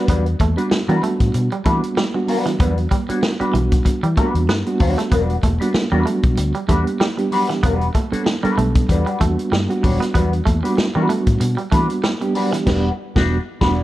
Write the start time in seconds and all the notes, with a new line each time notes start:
Already playing: G3 B3 D4 F#4
0.08 E2 G3 B3 D4 F#4 B4, kick, closed hi-hat, low conga
0.26 closed hi-hat
0.39 E2 A3, muted clean electric guitar stroke, kick, closed hi-hat, muted conga, high conga
0.57 G3 B3 D4 F#4 B4, muted clean electric guitar stroke, closed hi-hat
0.71 muted clean electric guitar stroke, muted fingered electric bass stroke, snare, muted conga, high conga
0.88 E3 G3 B3 D4 F#4 B4, closed hi-hat
1.03 A3, muted clean electric guitar stroke, closed hi-hat, muted conga, low conga
1.20 A2, muted clean electric guitar stroke, kick, closed hi-hat
1.34 B2, muted clean electric guitar stroke, closed hi-hat, muted conga
1.51 G3, muted clean electric guitar stroke, closed hi-hat
1.65 E3 G3 A3 B3 D4 F#4 B4, kick, closed hi-hat, muted conga, high conga
1.83 muted clean electric guitar stroke, closed hi-hat
1.96 G3, muted clean electric guitar stroke, snare, high conga
2.14 G3 B3 D4 F#4, muted clean electric guitar stroke
2.27 G3 D4 F#4 B4, open hi-hat, muted conga, low conga
2.46 E3, muted clean electric guitar stroke, snare, closed hi-hat
2.59 E2 G3 B3 D4 F#4 B4, kick, closed hi-hat, muted conga, low conga
2.78 closed hi-hat
2.91 G3, muted clean electric guitar stroke, kick, closed hi-hat, muted conga, high conga
3.09 G3 B3 D4 F#4 C#5, muted fingered electric bass stroke, muted clean electric guitar stroke, closed hi-hat
3.22 muted clean electric guitar stroke, snare, high conga
3.40 G3 B3 D4 F#4 B4, muted fingered electric bass stroke, closed hi-hat
3.54 B1 E3, muted clean electric guitar stroke, closed hi-hat, muted conga, low conga
3.72 muted clean electric guitar stroke, kick, closed hi-hat
3.85 muted clean electric guitar stroke, muted fingered electric bass stroke, kick, closed hi-hat, muted conga
4.03 E3 G3, muted clean electric guitar stroke, closed hi-hat
4.16 G3 A3 B3 D4 F#4 B4, kick, closed hi-hat, muted conga, high conga
4.35 E2, closed hi-hat
4.47 G2 B3, snare, muted conga, high conga
4.66 G3 B3 D4 F#4, muted clean electric guitar stroke, closed hi-hat
4.79 D#2 G3 D4 F#4 C#5, muted clean electric guitar stroke, kick, open hi-hat, muted conga, low conga
4.98 A3, muted clean electric guitar stroke, snare, closed hi-hat
5.11 E1 G3 B3 D4 F#4 B4, kick, closed hi-hat, muted conga, low conga
5.30 closed hi-hat
5.43 E1 A3, muted clean electric guitar stroke, kick, closed hi-hat, muted conga, high conga
5.60 G3 B3 D4 F#4 B4, muted clean electric guitar stroke, closed hi-hat
5.74 muted clean electric guitar stroke, muted fingered electric bass stroke, snare, muted conga, high conga
5.92 E2 G3 B3 D4 F#4 B4
6.06 A3, muted clean electric guitar stroke, closed hi-hat, muted conga, low conga
6.23 B1, muted clean electric guitar stroke, kick, closed hi-hat
6.37 D2, muted clean electric guitar stroke, closed hi-hat, muted conga
6.55 G3, muted clean electric guitar stroke, closed hi-hat
6.68 E2 G3 A3 B3 D4 F#4 G4 B4, kick, closed hi-hat, muted conga, high conga
6.86 muted clean electric guitar stroke, closed hi-hat
7.00 G3, muted clean electric guitar stroke, snare, muted conga, high conga
7.18 G3 B3 D4 G4, muted clean electric guitar stroke, closed hi-hat
7.31 G3 D4 F#4 B4, open hi-hat, low conga
7.50 E3, muted clean electric guitar stroke, snare, closed hi-hat
7.63 E1 G3 B3 D4 F#4 B4, kick, closed hi-hat, low conga
7.81 closed hi-hat
7.95 A3, muted clean electric guitar stroke, kick, closed hi-hat, high conga
8.12 G3 B3 D4 F#4 A4 C#5, muted fingered electric bass stroke, muted clean electric guitar stroke, closed hi-hat
8.26 muted clean electric guitar stroke, snare, muted conga, high conga
8.43 G3 B3 D4 F#4 A4 B4, muted fingered electric bass stroke, closed hi-hat
8.58 B1 A3, muted clean electric guitar stroke, closed hi-hat, muted conga, low conga
8.75 muted clean electric guitar stroke, kick, closed hi-hat
8.89 E2 G3 D4 F#4 B4, muted clean electric guitar stroke, kick, closed hi-hat
9.06 G3, closed hi-hat
9.20 E2 G3 A3 B3 D4 F#4, muted clean electric guitar stroke, kick, closed hi-hat, muted conga, high conga
9.38 muted clean electric guitar stroke, closed hi-hat
9.52 G2 G3, muted clean electric guitar stroke, snare, muted conga, high conga
9.69 G3 B3 D4 F#4, muted clean electric guitar stroke, closed hi-hat
9.83 D#1 G3 D4 F#4 C#5, muted clean electric guitar stroke, kick, open hi-hat, muted conga, low conga
10.00 B3, muted clean electric guitar stroke, snare, closed hi-hat
10.14 E2 G3 B3 D4 F#4 B4, kick, closed hi-hat, muted conga, low conga
10.33 closed hi-hat
10.46 E2 A3, muted clean electric guitar stroke, kick, closed hi-hat, muted conga, high conga
10.63 G3 B3 D4 F#4 B4, muted clean electric guitar stroke, closed hi-hat
10.78 muted clean electric guitar stroke, muted fingered electric bass stroke, snare, high conga
10.95 E3 G3 B3 D4 E4 F#4 B4
11.02 F#4
11.09 A3, muted clean electric guitar stroke, closed hi-hat, muted conga, low conga
11.26 A2, muted clean electric guitar stroke, kick, closed hi-hat
11.41 B2, muted clean electric guitar stroke, closed hi-hat, muted conga
11.57 G3, muted clean electric guitar stroke, closed hi-hat
11.72 E3 G3 A3 B3 D4 F#4 B4, kick, closed hi-hat, muted conga, high conga
11.89 muted clean electric guitar stroke, closed hi-hat
12.03 G3, muted clean electric guitar stroke, snare, high conga
12.21 G3 B3 D4 G4, muted clean electric guitar stroke, closed hi-hat
12.35 G3 D4 F#4 B4, open hi-hat, low conga
12.53 E3, muted clean electric guitar stroke, snare, closed hi-hat
12.66 E1 G3 B3 D4 F#4 G4 B4, kick, snare, crash
13.16 E1 G3 B3 D4 F#4, kick, snare
13.61 E1 G3 B3 D4 F#4 B4, kick, snare